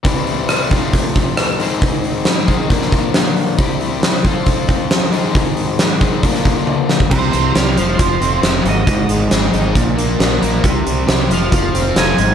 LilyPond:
<<
  \new Staff \with { instrumentName = "Lead electric guitar" } { \time 4/4 \key f \major \tempo 4 = 136 r1 | r1 | r1 | r1 |
c''4 f''4 c''4 e''8 ees''8~ | ees''8 r2. r8 | r4. f''4. aes''4 | }
  \new Staff \with { instrumentName = "Overdriven electric guitar" } { \time 4/4 \key f \major r1 | r1 | r1 | r1 |
c8 e8 g8 f8 f'8 c'8 f'8 aes,8 | aes,8 aes8 c'8 aes'8 bes,8 bes8 d'8 bes'8 | c8 g8 c'8 f8 f'8 c'8 f'8 aes,8 | }
  \new Staff \with { instrumentName = "Overdriven electric guitar" } { \clef bass \time 4/4 \key f \major <c e g c' e'>4. <f, c f a c' f'>2 <aes, ees aes c' ees' aes'>8~ | <aes, ees aes c' ees' aes'>4. <aes, ees aes c' ees' aes'>8 <bes, d f bes d' bes'>2 | <c g c' e' g'>4. <f c' f' a'>2 <aes, ees aes c' ees' aes'>8~ | <aes, ees aes c' ees' aes'>4. <aes, ees aes c' ees' aes'>8 <bes, d f bes d' bes'>2 |
c4 g'8 f8 f8 c'8 f8 aes,8 | aes,4 aes'8 ees'8 bes,8 bes8 f8 bes8 | c4 g'8 f8 f8 c'8 f8 aes,8 | }
  \new Staff \with { instrumentName = "Fingered electric bass" } { \clef bass \time 4/4 \key f \major r1 | r1 | r1 | r1 |
c,8 c,8 c,8 f,,8 f,,8 f,,8 f,,8 aes,,8 | aes,,8 aes,,8 aes,,8 aes,,8 bes,,4 bes,,8 bes,,8 | c,8 c,8 c,8 f,,8 f,,8 f,,8 f,,8 aes,,8 | }
  \new DrumStaff \with { instrumentName = "Drums" } \drummode { \time 4/4 <hho bd>8 hho8 <hho ss>8 <hho bd>8 <hho bd>8 <hho bd>8 <hho ss>8 hho8 | <hho bd>8 hho8 <hho sn>8 <hho bd>8 <hho bd>16 sn16 <hho bd>8 <hho sn>8 hho8 | <hho bd>8 hho8 <hho sn>8 <hho bd>8 <hho bd>8 <hho bd>8 <hho sn>8 hho8 | <hho bd>8 hho8 <hho sn>8 <hho bd>8 <hho bd>16 sn16 <hho bd>8 tommh8 sn16 bd16 |
<cymc bd>8 hh8 <hh sn>8 hh8 <hh bd>8 hh8 <hh sn>8 hh8 | <hh bd>8 hh8 <hh sn>8 hh8 <hh bd>8 hh8 <hh sn>8 hh8 | <hh bd>8 hh8 <hh sn>8 hh8 <hh bd>8 hh8 <hh sn>8 hh8 | }
>>